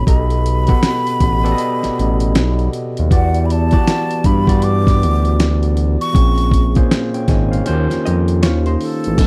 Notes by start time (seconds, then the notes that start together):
0.06 B1 B2 B3 G4 A4 D#5 B5, kick, closed hi-hat
0.30 closed hi-hat
0.46 closed hi-hat
0.67 B2 B3 G4 A4 F#5, kick, closed hi-hat
0.83 snare, closed hi-hat
1.07 closed hi-hat
1.20 A1, kick, closed hi-hat
1.43 B2 B3 G4 A4 D5, closed hi-hat
1.52 D#5
1.58 closed hi-hat
1.83 A1, snare, closed hi-hat
1.99 A1, closed hi-hat
2.20 closed hi-hat
2.35 B1, snare, closed hi-hat
2.59 closed hi-hat
2.73 closed hi-hat
2.97 D#2, closed hi-hat
3.10 E2 E3 B3 F#4 G4 D5 F#5, kick, closed hi-hat
3.34 closed hi-hat
3.45 B5
3.50 A5, closed hi-hat
3.71 E3 B3 F#4 G4 D5, kick, closed hi-hat
3.87 snare, closed hi-hat
4.11 closed hi-hat
4.24 G2 B5, kick, closed hi-hat
4.47 E3 B3 F#4 G4 D5, kick, closed hi-hat
4.62 D6, closed hi-hat
4.87 kick, snare, closed hi-hat
5.03 D2, closed hi-hat
5.25 closed hi-hat
5.40 snare, closed hi-hat
5.63 closed hi-hat
5.77 closed hi-hat
6.01 C#6, closed hi-hat
6.13 A#1 A#2 A#3 C4 C#4 G#4, kick, closed hi-hat
6.38 closed hi-hat
6.51 kick, closed hi-hat
6.75 A#2 A#3 C#4 G#4 C5, kick, closed hi-hat
6.91 C5 F5, snare, closed hi-hat
7.14 C#5 G5, closed hi-hat
7.28 G#1 D#5 G#5, kick, snare, closed hi-hat
7.51 C5 F5, closed hi-hat
7.65 D#3 A#3 C#4 F4 F#4 C5, closed hi-hat
7.69 D#2 G4
7.90 F2, snare, closed hi-hat
8.05 F2 G4 D#5, closed hi-hat
8.28 closed hi-hat
8.43 D#2 F4 C#5, snare, closed hi-hat
8.66 D#4 C5, closed hi-hat
8.81 A4, open hi-hat
9.04 A1, closed hi-hat
9.17 B1 B2 A3 C#4 D4 A4, kick, closed hi-hat, crash